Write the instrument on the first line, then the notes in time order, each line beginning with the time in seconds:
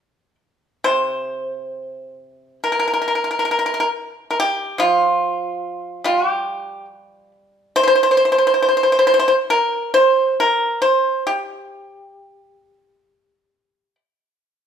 pipa
Already playing: G4
0.84 C3 C5
2.64 A#4
2.72 A#4
2.79 A#4
2.88 A#4
2.94 A#4
3.02 A#4
3.08 A#4
3.15 A#4
3.24 A#4
3.31 A#4
3.39 A#4
3.45 A#4
3.51 A#4
3.59 A#4
3.66 A#4
3.74 A#4
3.80 A#4
4.31 A#4
4.40 G4
4.78 F3 F4
6.04 G3 F4
6.29 G4
7.76 C5
7.83 C5
7.88 C5
7.95 C5
8.03 C5
8.11 C5
8.17 C5
8.25 C5
8.32 C5
8.38 C5
8.47 C5
8.54 C5
8.62 C5
8.69 C5
8.77 C5
8.83 C5
8.92 C5
8.99 C5
9.07 C5
9.14 C5
9.19 C5
9.28 C5
9.50 A#4
9.94 C5
10.40 A#4
10.82 C5
11.27 G4